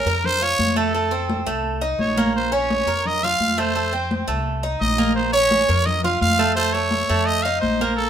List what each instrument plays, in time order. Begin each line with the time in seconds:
Already playing: trumpet A#4
0.05 upright bass F2, cuban tres A#4, high conga
0.24 trumpet C5, high conga, low conga
0.42 cuban tres F4, trumpet C#5, high conga
0.59 upright bass F2, high conga
0.76 cuban tres A3, trumpet A4, high conga
0.95 cuban tres A3, high conga
1.11 cuban tres C4, high conga
1.29 high conga
1.47 upright bass C2, cuban tres A3, high conga
1.64 high conga
1.81 cuban tres D#4, high conga
1.99 upright bass A#1, trumpet C#5, high conga
2.17 cuban tres A#3, high conga
2.35 trumpet C5, high conga
2.52 cuban tres C#4, trumpet C#5, high conga
2.70 high conga
2.86 upright bass F2, cuban tres A#4, high conga
3.06 trumpet D#5, high conga, low conga
3.23 cuban tres F4, trumpet F5, high conga, low conga
3.40 upright bass F2, high conga
3.58 cuban tres A3, trumpet C5, high conga
3.76 cuban tres A3, high conga
3.93 cuban tres C4, high conga
4.11 high conga
4.28 upright bass C2, cuban tres A3, high conga
4.47 high conga
4.63 cuban tres D#4, high conga
4.81 upright bass A#1, trumpet D#5, high conga
4.98 cuban tres A#3, high conga
5.15 trumpet C5, high conga
5.33 cuban tres C#4, trumpet C#5, high conga
5.51 high conga
5.69 upright bass F2, cuban tres A#4, high conga
5.86 trumpet D#5, high conga, low conga
6.04 cuban tres F4, trumpet F5, high conga, low conga
6.21 upright bass F2, trumpet F5, high conga
6.38 cuban tres A3, high conga
6.55 cuban tres A3, trumpet C5, high conga
6.74 cuban tres A3, trumpet C#5, high conga
6.91 high conga
7.09 upright bass F2, cuban tres A3, high conga
7.26 trumpet D#5, high conga
7.43 cuban tres D#4, trumpet F5, high conga
7.61 upright bass A#1, trumpet C5, high conga
7.80 cuban tres A#3, high conga
7.96 trumpet A4, high conga